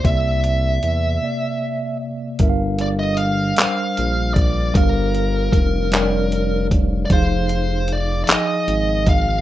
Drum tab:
HH |xxx---|xxxxxx|xxxxxx|xxxxxx|
CP |------|---x--|---x--|---x--|
BD |o-----|o----o|o-o--o|o----o|